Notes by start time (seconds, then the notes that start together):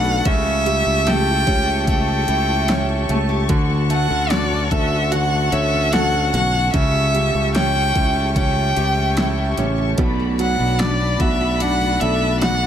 Already playing: B1 B2 A3 D4 F#4 D5 F#5 A5 B5
0.05 A4
0.25 C#2 C#3 G4 E5 C#6, kick, closed hi-hat
0.46 A3
0.66 G3 G4, closed hi-hat
0.86 C#2 E4
1.07 A3 G4 G5, snare, closed hi-hat
1.27 E4
1.47 C#2 A3 C#4, kick, closed hi-hat
1.68 G4
1.87 C#3 A3 G4 G5, kick, closed hi-hat
2.08 A3
2.28 C#2 E4 G4, closed hi-hat
2.49 E4
2.68 C#4 G4, snare, closed hi-hat
2.89 E4
3.09 C#2 A3, snare, closed hi-hat
3.29 G4
3.49 D2 D3 F#4 F#5, kick, closed hi-hat
3.70 A3
3.90 A3 F#4 F#5, closed hi-hat
4.10 D2 C#4
4.30 F#4 D5, snare, closed hi-hat
4.52 C#4
4.71 D2 A3 A4 E5, kick, closed hi-hat
4.92 F#4
5.11 D3 F#4 F#5, closed hi-hat
5.33 A3
5.52 D2 F#4 C#5 E5, closed hi-hat
5.73 C#4
5.92 F#4 A4 F#5, snare, closed hi-hat
6.14 C#4
6.33 B1 A3 F#4 F#5, snare, closed hi-hat
6.54 F#4
6.73 C#2 C#3 G4 E5, kick, closed hi-hat
6.95 A3
7.15 G3 G4, closed hi-hat
7.35 C#2 C#4
7.55 C#4 G4 G5, snare, closed hi-hat
7.75 C#4
7.96 C#2 A3 E4, kick, closed hi-hat
8.16 G4
8.36 C#3 C#4 G4 G5, kick, closed hi-hat
8.56 A3
8.77 C#2 G4, closed hi-hat
8.97 C#4
9.17 E4 G4, snare, closed hi-hat
9.38 C#4
9.57 A1 A3 C#4, snare, closed hi-hat
9.78 G4
9.98 B1 B2 F#4 D5 B5, kick, closed hi-hat
10.19 A3
10.39 F#3 F#4 F#5, closed hi-hat
10.60 B1 D4
10.79 D4 F#4 D5, snare, closed hi-hat
11.00 D4
11.20 B1 A3 F#4 E5, kick, closed hi-hat
11.41 F#4
11.60 B2 D4 F#4 F#5, closed hi-hat
11.81 A3
12.00 B1 F#4 A4 E5, closed hi-hat
12.22 D4
12.41 F#4 F#5, snare, closed hi-hat
12.62 D4